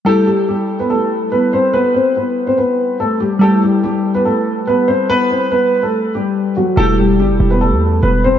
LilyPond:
<<
  \new Staff \with { instrumentName = "Synth keys" } { \time 4/4 \key e \minor \tempo 4 = 143 <g e' g'>1~ | <g e' g'>1 | <g e' g'>1~ | <g e' g'>1 |
<g e' g'>1 | }
  \new Staff \with { instrumentName = "Grand piano" } { \time 4/4 \key e \minor <a a'>8 <g g'>8 <g g'>8. <b b'>16 <a a'>4 <b b'>8 <c' c''>8 | <b b'>8 <c' c''>8 <b b'>8. <c' c''>16 <b b'>4 <a a'>8 <g g'>8 | <a a'>8 <g g'>8 <g g'>8. <b b'>16 <a a'>4 <b b'>8 <c' c''>8 | <b b'>8 <c' c''>8 <b b'>8. <a a'>8. <g g'>4 <fis fis'>8 |
<a a'>8 <g g'>8 <g g'>8. <b b'>16 <a a'>4 <b b'>8 <c' c''>8 | }
  \new Staff \with { instrumentName = "808-style bass" } { \clef bass \time 4/4 \key e \minor r1 | r1 | r1 | r1 |
e,,4 g,,16 e,,16 e,,8. e,8. e,,4 | }
>>